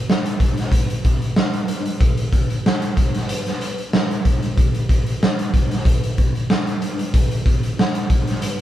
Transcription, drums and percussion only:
0.10 snare
0.26 closed hi-hat
0.40 kick, closed hi-hat
0.57 snare, closed hi-hat
0.72 kick, closed hi-hat
0.90 closed hi-hat
1.05 kick, closed hi-hat
1.22 closed hi-hat
1.36 snare
1.53 closed hi-hat
1.68 closed hi-hat
1.85 closed hi-hat
2.01 kick, closed hi-hat
2.17 closed hi-hat
2.33 kick, closed hi-hat
2.50 closed hi-hat
2.66 snare
2.82 closed hi-hat
2.97 kick, closed hi-hat
3.14 snare, closed hi-hat
3.29 closed hi-hat
3.46 snare, closed hi-hat
3.61 closed hi-hat
3.78 closed hi-hat
3.93 snare
4.11 closed hi-hat
4.25 kick, closed hi-hat
4.42 closed hi-hat
4.58 kick, closed hi-hat
4.74 closed hi-hat
4.89 kick, closed hi-hat
5.06 closed hi-hat
5.23 snare
5.39 closed hi-hat
5.54 kick, closed hi-hat
5.71 snare, closed hi-hat
5.85 kick, closed hi-hat
6.03 closed hi-hat
6.18 kick, closed hi-hat
6.35 closed hi-hat
6.50 snare
6.67 closed hi-hat
6.82 closed hi-hat
6.99 closed hi-hat
7.14 kick, closed hi-hat
7.31 closed hi-hat
7.46 kick, closed hi-hat
7.63 closed hi-hat
7.79 snare
7.95 closed hi-hat
8.10 kick, closed hi-hat
8.27 snare, closed hi-hat
8.42 closed hi-hat

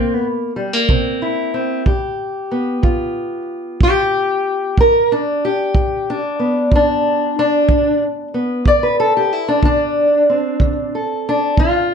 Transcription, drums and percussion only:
0.89 kick
1.86 kick
2.83 kick
3.81 kick
4.78 kick
5.75 kick
6.72 kick
7.69 kick
8.66 kick
9.63 kick
10.60 kick
11.57 kick

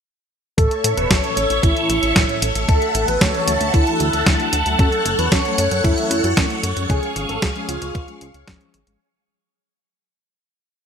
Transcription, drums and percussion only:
0.58 kick, closed hi-hat
0.71 closed hi-hat
0.84 closed hi-hat
0.97 closed hi-hat
1.11 kick, snare, closed hi-hat
1.24 closed hi-hat
1.37 closed hi-hat
1.50 closed hi-hat
1.63 kick, closed hi-hat
1.77 closed hi-hat
1.90 closed hi-hat
2.03 closed hi-hat
2.16 kick, snare, closed hi-hat
2.29 closed hi-hat
2.42 closed hi-hat
2.55 closed hi-hat
2.69 kick, closed hi-hat
2.82 closed hi-hat
2.95 closed hi-hat
3.08 closed hi-hat
3.21 kick, snare, closed hi-hat
3.34 closed hi-hat
3.48 closed hi-hat
3.61 closed hi-hat
3.74 kick, closed hi-hat
3.87 closed hi-hat
4.00 closed hi-hat
4.13 closed hi-hat
4.26 kick, snare, closed hi-hat
4.40 closed hi-hat
4.53 closed hi-hat
4.66 closed hi-hat
4.79 kick, closed hi-hat
4.92 closed hi-hat
5.06 closed hi-hat
5.19 closed hi-hat
5.32 kick, snare, closed hi-hat
5.45 closed hi-hat
5.58 closed hi-hat
5.71 closed hi-hat
5.84 kick, closed hi-hat
5.98 closed hi-hat
6.11 closed hi-hat
6.24 closed hi-hat
6.37 kick, snare, closed hi-hat
6.50 closed hi-hat
6.63 closed hi-hat
6.77 closed hi-hat
6.90 kick, closed hi-hat
7.03 closed hi-hat
7.16 closed hi-hat
7.29 closed hi-hat
7.42 kick, snare, closed hi-hat
7.56 closed hi-hat
7.69 closed hi-hat
7.82 closed hi-hat
7.95 kick, closed hi-hat
8.08 closed hi-hat
8.21 closed hi-hat
8.34 closed hi-hat
8.48 kick, snare, closed hi-hat
8.61 closed hi-hat
8.74 closed hi-hat
8.87 closed hi-hat

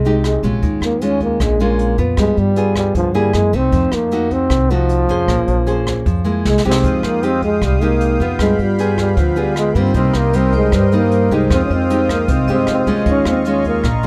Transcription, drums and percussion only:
0.05 closed hi-hat
0.24 cross-stick, closed hi-hat
0.43 kick, closed hi-hat
0.63 kick, closed hi-hat
0.82 cross-stick, closed hi-hat
1.01 closed hi-hat
1.20 kick, closed hi-hat
1.40 kick, cross-stick, closed hi-hat
1.60 closed hi-hat
1.79 closed hi-hat
1.98 kick, closed hi-hat
2.17 kick, cross-stick, closed hi-hat
2.37 closed hi-hat
2.56 closed hi-hat
2.76 kick, cross-stick, closed hi-hat
2.95 kick, closed hi-hat
3.14 closed hi-hat
3.33 cross-stick, closed hi-hat
3.53 kick, closed hi-hat
3.72 kick, closed hi-hat
3.92 cross-stick, closed hi-hat
4.11 closed hi-hat
4.31 kick, closed hi-hat
4.50 kick, cross-stick, closed hi-hat
4.70 closed hi-hat
4.89 closed hi-hat
5.09 kick, closed hi-hat
5.28 kick, cross-stick, closed hi-hat
5.48 closed hi-hat
5.67 closed hi-hat
5.87 kick, cross-stick, closed hi-hat
6.06 kick, closed hi-hat
6.26 closed hi-hat
6.45 snare
6.58 snare
6.71 snare
6.84 kick, closed hi-hat
7.03 cross-stick, closed hi-hat
7.23 closed hi-hat
7.42 kick, closed hi-hat
7.62 kick, cross-stick, closed hi-hat
7.82 closed hi-hat
8.01 closed hi-hat
8.20 kick, closed hi-hat
8.39 kick, cross-stick, closed hi-hat
8.59 closed hi-hat
8.78 closed hi-hat
8.98 kick, cross-stick, closed hi-hat
9.17 kick, closed hi-hat
9.36 closed hi-hat
9.56 cross-stick, closed hi-hat
9.75 kick, closed hi-hat
9.94 kick, closed hi-hat
10.14 cross-stick, closed hi-hat
10.33 closed hi-hat
10.53 kick, closed hi-hat
10.72 kick, cross-stick, closed hi-hat
10.92 closed hi-hat
11.11 closed hi-hat
11.31 kick, closed hi-hat
11.50 kick, cross-stick, closed hi-hat
11.71 closed hi-hat
11.90 closed hi-hat
12.09 kick, cross-stick, closed hi-hat
12.28 kick, closed hi-hat
12.48 closed hi-hat
12.67 cross-stick, closed hi-hat
12.87 kick, closed hi-hat
13.06 kick, closed hi-hat
13.25 cross-stick, closed hi-hat
13.45 closed hi-hat
13.64 kick, closed hi-hat
13.84 kick, cross-stick, closed hi-hat
14.03 closed hi-hat

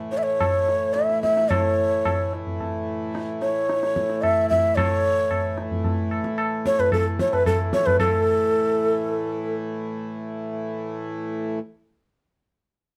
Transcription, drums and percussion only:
0.13 tabla te
0.41 tabla na, tabla ge
0.69 tabla te
0.96 tabla te
1.09 tabla te
1.23 tabla ke
1.37 tabla te
1.51 tabla na, tabla ge
2.05 tabla na, tabla ge
2.33 tabla te
2.47 tabla ge
2.60 tabla tin, tabla ge
3.15 tabla te
3.42 tabla te
3.69 tabla te
3.83 tabla te
3.96 tabla ke
4.10 tabla te
4.23 tabla na, tabla ge
4.51 tabla ge
4.77 tabla na, tabla ge
5.31 tabla na, tabla ge
5.58 tabla te
5.71 tabla ge
5.84 tabla tin, tabla ge
6.11 tabla na
6.24 tabla ke
6.38 tabla na
6.66 tabla ke
6.79 tabla tin, tabla ge
6.92 tabla na, tabla ge
7.19 tabla ke
7.33 tabla tin, tabla ge
7.46 tabla na, tabla ge
7.73 tabla ke
7.87 tabla tin, tabla ge
8.00 tabla na, tabla ge

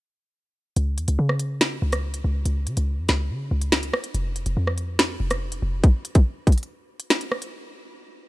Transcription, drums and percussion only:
0.76 closed hi-hat
0.98 closed hi-hat
1.08 closed hi-hat
1.29 cross-stick
1.39 closed hi-hat
1.61 snare
1.92 cross-stick, closed hi-hat
2.14 closed hi-hat
2.46 closed hi-hat
2.67 closed hi-hat
2.77 closed hi-hat
3.09 snare, closed hi-hat
3.62 closed hi-hat
3.72 snare
3.83 closed hi-hat
3.94 cross-stick
4.04 closed hi-hat
4.14 closed hi-hat
4.36 closed hi-hat
4.46 closed hi-hat
4.67 cross-stick
4.78 closed hi-hat
4.99 snare
5.31 cross-stick, closed hi-hat
5.52 closed hi-hat
5.84 kick, closed hi-hat
6.05 closed hi-hat
6.15 kick, closed hi-hat
6.47 kick, closed hi-hat
6.52 closed hi-hat
6.58 closed hi-hat
6.63 closed hi-hat
7.00 closed hi-hat
7.10 snare
7.21 closed hi-hat
7.32 cross-stick
7.42 closed hi-hat

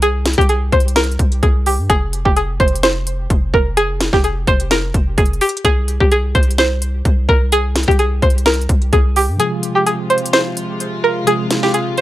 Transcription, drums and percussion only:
0.02 closed hi-hat
0.26 snare, closed hi-hat
0.33 closed hi-hat
0.38 kick, closed hi-hat
0.49 closed hi-hat
0.72 kick, closed hi-hat
0.80 closed hi-hat
0.88 closed hi-hat
0.96 snare, closed hi-hat
1.04 closed hi-hat
1.12 closed hi-hat
1.19 kick, closed hi-hat
1.32 closed hi-hat
1.43 kick, closed hi-hat
1.66 open hi-hat
1.90 kick, closed hi-hat
2.13 closed hi-hat
2.25 kick
2.37 closed hi-hat
2.60 kick, closed hi-hat
2.68 closed hi-hat
2.76 closed hi-hat
2.83 snare, closed hi-hat
3.07 closed hi-hat
3.30 kick, closed hi-hat
3.54 kick
3.77 closed hi-hat
4.01 snare, closed hi-hat
4.13 kick, snare
4.24 closed hi-hat
4.47 kick, closed hi-hat
4.60 closed hi-hat
4.71 snare, closed hi-hat
4.94 kick, closed hi-hat
5.18 kick, closed hi-hat
5.26 closed hi-hat
5.33 closed hi-hat
5.41 closed hi-hat, open hi-hat
5.49 closed hi-hat
5.57 closed hi-hat
5.65 kick, closed hi-hat
5.88 closed hi-hat
6.00 kick
6.12 closed hi-hat
6.35 kick, closed hi-hat
6.43 closed hi-hat
6.51 closed hi-hat
6.58 snare, closed hi-hat
6.82 closed hi-hat
7.05 kick, closed hi-hat
7.29 kick
7.52 closed hi-hat
7.76 snare, closed hi-hat
7.83 closed hi-hat
7.88 kick, closed hi-hat
7.99 closed hi-hat
8.22 kick, closed hi-hat
8.30 closed hi-hat
8.38 closed hi-hat
8.46 snare, closed hi-hat
8.54 closed hi-hat
8.61 closed hi-hat
8.69 kick, closed hi-hat
8.82 closed hi-hat
8.93 kick, closed hi-hat
9.16 open hi-hat
9.40 closed hi-hat
9.63 closed hi-hat
9.87 closed hi-hat
10.10 closed hi-hat
10.18 closed hi-hat
10.26 closed hi-hat
10.33 snare, closed hi-hat
10.57 closed hi-hat
10.80 closed hi-hat
11.27 closed hi-hat
11.51 snare, closed hi-hat
11.63 snare
11.74 closed hi-hat
11.97 closed hi-hat

